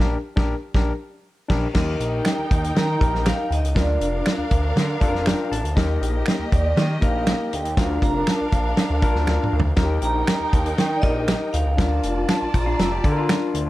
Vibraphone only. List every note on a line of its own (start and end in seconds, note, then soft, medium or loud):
1.77 2.28 D#5 medium
2.27 2.78 G5 loud
2.78 3.23 A#5 loud
3.27 3.52 F5 medium
3.52 3.77 D#5 medium
3.77 4.23 D5 medium
6.53 6.78 D5 medium
6.79 7.04 D#5 medium
7.03 7.54 F5 medium
7.54 7.79 G5 medium
7.78 8.03 F5 medium
8.03 8.29 A#5 medium
8.29 9.49 A5 medium
10.04 10.49 A#5 loud
10.49 10.54 A5 medium
10.54 10.77 G5 medium
10.78 10.96 G5 loud
10.96 11.03 D5 medium
11.02 11.54 D#5 medium
11.53 12.31 F5 medium
12.29 12.54 A5 medium
12.54 13.50 A#5 medium